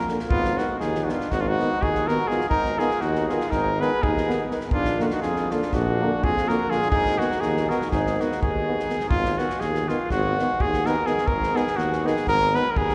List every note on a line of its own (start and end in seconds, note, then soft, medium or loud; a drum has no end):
0.09 0.18 D3 soft
0.09 0.18 A#3 soft
0.09 snare soft
0.19 snare soft
0.29 0.59 G#1 medium
0.29 0.59 B3 medium
0.29 0.59 F4 medium
0.29 kick medium
0.45 snare soft
0.57 0.67 D#3 soft
0.57 0.67 B3 soft
0.57 0.78 D#4 medium
0.57 0.79 F#4 medium
0.57 snare soft
0.79 1.09 D#2 medium
0.79 1.01 D#4 medium
0.79 1.06 G#4 medium
0.79 snare soft
0.95 snare soft
1.01 1.09 D#4 soft
1.01 1.11 F#4 medium
1.07 1.18 D#3 medium
1.07 1.18 B3 soft
1.07 1.31 D4 medium
1.07 1.33 F4 medium
1.07 snare soft
1.21 snare soft
1.29 1.59 G#1 medium
1.29 1.41 D#4 medium
1.29 1.42 F#4 medium
1.29 kick medium
1.29 snare soft
1.40 1.49 D4 medium
1.40 1.50 F4 medium
1.47 1.81 D#4 medium
1.47 1.84 F#4 loud
1.59 1.69 D#3 medium
1.59 1.68 B3 medium
1.59 snare soft
1.81 2.20 D#2 medium
1.81 2.09 D#4 medium
1.81 2.09 G#4 medium
1.81 kick medium
1.95 snare soft
2.07 2.17 D#3 medium
2.07 2.17 B3 medium
2.07 2.30 F#4 medium
2.07 2.29 A#4 medium
2.07 snare soft
2.27 2.37 D#3 soft
2.27 2.38 B3 medium
2.27 2.49 F4 medium
2.27 2.48 G#4 medium
2.27 snare soft
2.41 snare soft
2.49 2.79 G#1 medium
2.49 2.80 D#4 medium
2.49 2.80 A#4 medium
2.49 kick medium
2.65 snare soft
2.79 2.89 D#3 medium
2.79 2.89 B3 medium
2.79 3.03 F4 medium
2.79 3.03 G#4 medium
2.79 snare soft
2.91 snare soft
3.01 3.30 D#2 medium
3.01 3.28 D#4 medium
3.01 3.28 F#4 medium
3.01 snare soft
3.15 snare soft
3.28 3.39 D#3 medium
3.28 3.39 B3 soft
3.28 3.52 F4 medium
3.28 3.52 G#4 medium
3.28 snare soft
3.41 snare soft
3.50 3.80 G#1 medium
3.50 3.82 D#4 medium
3.50 3.82 A#4 medium
3.50 kick medium
3.50 snare soft
3.80 3.90 D#3 medium
3.80 3.89 B3 medium
3.80 4.04 G#4 medium
3.80 4.04 B4 medium
3.80 snare soft
4.02 4.41 D#2 medium
4.02 4.46 D#4 medium
4.02 4.46 G#4 medium
4.02 kick medium
4.17 snare soft
4.27 4.37 D#3 medium
4.27 4.36 B3 medium
4.27 snare soft
4.49 4.59 D#3 medium
4.49 4.58 B3 soft
4.49 snare soft
4.61 snare soft
4.71 5.00 A#1 medium
4.71 5.02 D4 medium
4.71 5.03 F4 medium
4.71 kick medium
4.85 snare soft
4.98 5.10 D3 medium
4.98 5.07 A#3 medium
4.98 5.05 D#4 soft
4.98 5.06 F#4 medium
4.98 snare soft
5.04 5.13 D4 soft
5.04 5.14 F4 medium
5.10 5.22 D#4 medium
5.10 5.21 F#4 medium
5.10 snare soft
5.22 5.50 F2 medium
5.22 5.52 F4 medium
5.22 5.53 G#4 medium
5.22 snare soft
5.36 snare soft
5.51 5.60 D3 medium
5.51 5.60 A#3 medium
5.51 5.72 D4 medium
5.51 5.75 F4 medium
5.51 snare soft
5.62 snare soft
5.72 6.02 A#1 loud
5.72 6.24 D4 medium
5.72 6.25 F#4 medium
5.72 kick medium
5.72 snare soft
6.01 6.10 D3 medium
6.01 6.10 A#3 medium
6.23 6.61 F2 medium
6.23 6.49 F4 medium
6.23 6.50 G#4 medium
6.23 kick medium
6.37 snare soft
6.48 6.58 D3 medium
6.48 6.57 A#3 medium
6.48 6.72 F#4 medium
6.48 6.72 A#4 medium
6.48 snare soft
6.70 6.78 D3 soft
6.70 6.78 A#3 soft
6.70 6.90 F4 medium
6.70 6.90 G#4 medium
6.70 snare soft
6.82 snare soft
6.90 7.19 G#1 medium
6.90 7.18 D#4 medium
6.90 7.20 G#4 loud
6.90 kick medium
7.06 snare soft
7.18 7.28 D#3 medium
7.18 7.29 B3 medium
7.18 7.39 D#4 medium
7.18 7.42 F#4 medium
7.18 snare soft
7.32 snare soft
7.39 7.70 D#2 medium
7.39 7.71 D#4 medium
7.39 7.71 G#4 medium
7.39 snare soft
7.57 snare soft
7.69 7.79 D#3 medium
7.69 7.78 B3 medium
7.69 7.91 F#4 medium
7.69 7.90 A#4 medium
7.69 snare soft
7.81 snare soft
7.91 8.20 G#1 medium
7.91 8.19 D#4 medium
7.91 8.22 G#4 medium
7.91 kick medium
7.91 snare soft
8.07 snare soft
8.19 8.29 D#3 medium
8.19 8.28 B3 medium
8.19 8.42 D#4 medium
8.19 8.41 F#4 medium
8.19 snare soft
8.32 snare soft
8.42 8.80 D#2 medium
8.42 9.06 D#4 medium
8.42 9.06 G#4 medium
8.42 kick medium
8.67 8.77 D#3 medium
8.67 8.75 B3 medium
8.80 snare soft
8.88 8.98 D#3 soft
8.88 8.97 B3 soft
8.88 snare soft
9.00 snare soft
9.10 9.38 G#1 medium
9.10 9.40 F4 medium
9.10 kick medium
9.25 snare soft
9.37 9.46 D#3 soft
9.37 9.47 B3 medium
9.37 9.62 F#4 medium
9.37 snare soft
9.50 snare soft
9.60 9.89 D#2 medium
9.60 9.90 G#4 medium
9.60 snare soft
9.75 snare soft
9.88 9.97 D#3 medium
9.88 9.97 B3 soft
9.88 10.10 F4 medium
9.88 snare soft
10.10 10.38 G#1 loud
10.10 10.63 F#4 medium
10.10 kick medium
10.10 snare soft
10.37 10.46 D#3 medium
10.37 10.48 B3 medium
10.37 snare soft
10.60 10.98 D#2 medium
10.60 10.88 G#4 medium
10.60 kick medium
10.73 snare soft
10.86 10.94 D#3 medium
10.86 10.94 B3 medium
10.86 11.08 A#4 medium
10.86 snare soft
11.05 11.15 D#3 medium
11.05 11.14 B3 soft
11.05 11.29 G#4 medium
11.05 snare soft
11.18 snare soft
11.27 11.55 G#1 medium
11.27 11.58 A#4 medium
11.27 kick medium
11.43 snare soft
11.54 11.64 D#3 medium
11.54 11.63 B3 medium
11.54 11.78 G#4 medium
11.54 snare soft
11.67 snare soft
11.77 12.04 D#2 medium
11.77 12.08 F#4 medium
11.77 snare soft
11.93 snare soft
12.04 12.14 D#3 medium
12.04 12.12 B3 medium
12.04 12.27 G#4 medium
12.04 snare soft
12.17 snare soft
12.27 12.55 G#1 loud
12.27 12.57 A#4 loud
12.27 kick medium
12.27 snare soft
12.54 12.64 D#3 medium
12.54 12.63 B3 medium
12.54 12.72 B4 loud
12.54 snare soft
12.71 12.79 A#4 medium
12.76 12.95 D#2 medium
12.76 12.95 G#4 medium
12.76 kick medium
12.89 snare soft